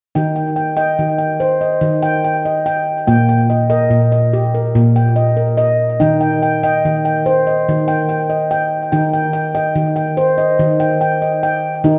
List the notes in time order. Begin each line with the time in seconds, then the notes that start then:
0.15 D#3 D#4 G5
0.36 G5
0.56 G5
0.77 D#5 G5
0.99 D#3
1.18 G5
1.40 C5
1.61 D#5
1.81 D#3
2.03 G5
2.25 G5
2.45 D#5
2.66 G5
3.07 A#2 A#3 G5
3.29 G5
3.50 D#5
3.70 A#4 D#5
3.91 A#2
4.12 D#5
4.33 G4
4.55 A#4
4.75 A#2
4.96 G5
5.16 D#5
5.37 A#4
5.57 D#5
6.00 D#3 D#4 G5
6.21 G5
6.43 G5
6.63 D#5 G5
6.85 D#3
7.05 G5
7.26 C5
7.47 D#5
7.69 D#3
7.88 G5
8.09 G5
8.30 D#5
8.51 G5
8.92 D#3 D#4 G5
9.13 G5
9.33 G5
9.55 D#5 G5
9.76 D#3
9.96 G5
10.17 C5
10.38 D#5
10.59 D#3
10.80 G5
11.01 G5
11.22 D#5
11.43 G5
11.84 D#3 D#4